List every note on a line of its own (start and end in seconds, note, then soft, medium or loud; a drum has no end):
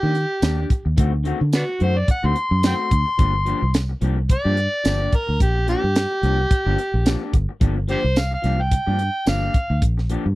0.00 0.24 D#3 medium
0.00 0.14 D4 medium
0.00 0.95 G4 loud
0.00 0.15 G4 medium
0.04 0.13 A#3 medium
0.14 muted clean electric guitar stroke medium
0.14 closed hi-hat medium
0.42 0.64 D#2 medium
0.42 0.58 A#3 medium
0.42 0.58 D4 medium
0.42 0.56 G4 medium
0.42 snare loud
0.42 closed hi-hat medium
0.42 tambourine loud
0.57 0.69 D4 soft
0.57 0.70 G4 medium
0.70 muted clean electric guitar stroke soft
0.70 kick loud
0.70 closed hi-hat medium
0.85 0.95 D#2 medium
0.85 muted clean electric guitar stroke soft
0.97 1.31 D2 loud
0.97 1.13 D#3 medium
0.97 1.13 A3 medium
0.97 1.12 C4 medium
0.97 1.11 F#4 medium
0.97 kick loud
0.97 closed hi-hat medium
1.12 muted clean electric guitar stroke soft
1.24 1.40 D#3 medium
1.24 1.40 A3 medium
1.24 1.40 C4 medium
1.24 1.39 F#4 medium
1.24 closed hi-hat medium
1.40 1.63 D3 medium
1.40 muted clean electric guitar stroke soft
1.53 1.63 B3 medium
1.53 1.64 D4 medium
1.53 1.85 F#4 medium
1.53 snare loud
1.53 closed hi-hat medium
1.53 tambourine loud
1.67 muted clean electric guitar stroke soft
1.79 2.02 F#2 loud
1.79 1.95 D#3 medium
1.79 1.96 A3 medium
1.79 1.95 C4 medium
1.79 1.94 F#4 medium
1.79 closed hi-hat medium
1.83 2.00 C5 medium
1.95 2.09 D5 medium
1.95 muted clean electric guitar stroke soft
2.08 2.28 F#5 medium
2.08 muted clean electric guitar stroke soft
2.08 kick medium
2.08 closed hi-hat medium
2.23 2.33 D2 loud
2.23 2.34 D#3 medium
2.23 2.35 A3 medium
2.23 2.35 C4 medium
2.23 2.36 F#4 medium
2.23 2.64 C6 medium
2.35 muted clean electric guitar stroke soft
2.35 closed hi-hat medium
2.51 2.73 F#2 loud
2.63 2.78 D#3 medium
2.63 2.79 A3 medium
2.63 2.78 C4 medium
2.63 2.76 F#4 medium
2.63 snare loud
2.63 closed hi-hat medium
2.63 tambourine loud
2.67 2.75 G5 medium
2.67 3.72 C6 loud
2.78 2.90 A3 soft
2.78 2.91 C4 soft
2.78 2.91 F#4 soft
2.91 3.03 D2 medium
2.91 muted clean electric guitar stroke soft
2.91 kick medium
2.91 closed hi-hat medium
3.06 muted clean electric guitar stroke soft
3.18 3.53 G1 loud
3.18 3.34 F3 medium
3.18 3.33 A#3 medium
3.18 3.33 D4 medium
3.18 3.32 G4 medium
3.18 kick loud
3.18 closed hi-hat medium
3.33 muted clean electric guitar stroke medium
3.45 3.61 F3 medium
3.45 3.62 A#3 medium
3.45 3.61 D4 medium
3.45 3.60 G4 medium
3.45 closed hi-hat medium
3.61 3.93 C2 medium
3.61 muted clean electric guitar stroke medium
3.74 snare loud
3.74 closed hi-hat medium
3.74 tambourine loud
3.89 muted clean electric guitar stroke soft
4.01 4.35 C2 loud
4.01 4.17 F3 medium
4.01 4.17 A#3 medium
4.01 4.17 D4 medium
4.01 4.16 G4 medium
4.01 closed hi-hat medium
4.17 muted clean electric guitar stroke soft
4.29 5.17 D5 loud
4.29 muted clean electric guitar stroke soft
4.29 kick medium
4.29 closed hi-hat medium
4.45 4.67 G2 medium
4.45 4.56 F3 medium
4.45 4.56 A#3 medium
4.45 4.56 D4 medium
4.45 4.57 G4 medium
4.57 muted clean electric guitar stroke soft
4.57 closed hi-hat medium
4.84 5.07 G1 medium
4.84 5.00 F3 medium
4.84 5.00 A#3 medium
4.84 5.00 D4 medium
4.84 4.98 G4 medium
4.84 snare loud
4.84 closed hi-hat medium
4.84 tambourine loud
5.00 5.12 A#3 soft
5.00 5.12 D4 soft
5.00 5.12 G4 medium
5.12 5.40 A#4 medium
5.12 muted clean electric guitar stroke soft
5.12 kick medium
5.12 closed hi-hat medium
5.27 5.38 D2 medium
5.27 muted clean electric guitar stroke soft
5.40 5.74 A#1 loud
5.40 5.68 G4 medium
5.40 kick loud
5.40 closed hi-hat medium
5.55 muted clean electric guitar stroke soft
5.67 5.82 F3 medium
5.67 5.83 A#3 medium
5.67 5.82 D4 medium
5.67 5.81 G4 medium
5.67 7.30 G4 loud
5.67 closed hi-hat medium
5.82 6.05 G2 medium
5.82 muted clean electric guitar stroke soft
5.96 snare loud
5.96 closed hi-hat medium
5.96 tambourine loud
6.11 muted clean electric guitar stroke soft
6.22 6.45 C2 loud
6.22 6.38 F3 medium
6.22 6.38 A#3 medium
6.22 6.38 D4 medium
6.22 6.37 G4 medium
6.22 closed hi-hat medium
6.38 muted clean electric guitar stroke soft
6.50 muted clean electric guitar stroke soft
6.50 kick loud
6.50 closed hi-hat medium
6.66 6.76 G1 loud
6.66 6.77 F3 medium
6.66 6.78 A#3 medium
6.66 6.78 D4 medium
6.66 6.78 G4 medium
6.78 muted clean electric guitar stroke soft
6.78 closed hi-hat medium
6.94 7.15 A#1 loud
7.05 7.21 F3 medium
7.05 7.21 A#3 medium
7.05 7.21 D4 medium
7.05 7.19 G4 medium
7.05 snare loud
7.05 closed hi-hat loud
7.05 tambourine loud
7.21 7.32 A#3 soft
7.21 7.33 D4 medium
7.21 7.33 G4 medium
7.33 7.45 G1 loud
7.33 muted clean electric guitar stroke soft
7.33 kick medium
7.33 closed hi-hat medium
7.49 muted clean electric guitar stroke medium
7.60 7.95 G1 loud
7.60 7.76 F3 medium
7.60 7.76 A#3 medium
7.60 7.76 D4 medium
7.60 7.75 G4 medium
7.60 kick loud
7.60 closed hi-hat medium
7.76 muted clean electric guitar stroke soft
7.88 8.03 F3 medium
7.88 8.03 A#3 medium
7.88 8.03 D4 medium
7.88 8.02 G4 medium
7.88 7.99 G4 medium
7.88 8.20 C5 loud
7.88 closed hi-hat medium
8.03 8.35 C2 medium
8.03 muted clean electric guitar stroke soft
8.16 8.32 F5 medium
8.16 snare loud
8.16 closed hi-hat medium
8.16 tambourine loud
8.31 8.63 F5 medium
8.31 muted clean electric guitar stroke soft
8.42 8.77 C2 loud
8.42 8.58 F3 medium
8.42 8.58 A#3 medium
8.42 8.58 D4 medium
8.42 8.57 G4 medium
8.42 snare soft
8.42 closed hi-hat medium
8.58 9.26 G5 medium
8.58 muted clean electric guitar stroke soft
8.71 muted clean electric guitar stroke soft
8.71 kick medium
8.71 closed hi-hat medium
8.87 9.09 G2 medium
8.87 8.98 F3 medium
8.87 8.98 A#3 medium
8.87 8.99 D4 medium
8.87 8.99 G4 medium
8.99 muted clean electric guitar stroke soft
8.99 closed hi-hat medium
9.26 9.48 G1 medium
9.26 9.42 F3 medium
9.26 9.42 A#3 medium
9.26 9.42 D4 medium
9.26 9.40 G4 medium
9.26 9.81 F5 medium
9.26 snare loud
9.26 closed hi-hat medium
9.26 tambourine loud
9.41 9.53 A#3 soft
9.41 9.54 D4 soft
9.41 9.54 G4 medium
9.54 muted clean electric guitar stroke soft
9.54 kick loud
9.54 closed hi-hat medium
9.70 9.79 D2 medium
9.70 muted clean electric guitar stroke soft
9.82 10.16 A#1 loud
9.82 kick loud
9.82 closed hi-hat medium
9.98 muted clean electric guitar stroke soft
9.98 snare soft
10.10 10.25 F3 medium
10.10 10.25 A#3 medium
10.10 10.25 D4 medium
10.10 10.24 G4 medium
10.10 closed hi-hat medium
10.25 10.35 G2 medium
10.25 muted clean electric guitar stroke soft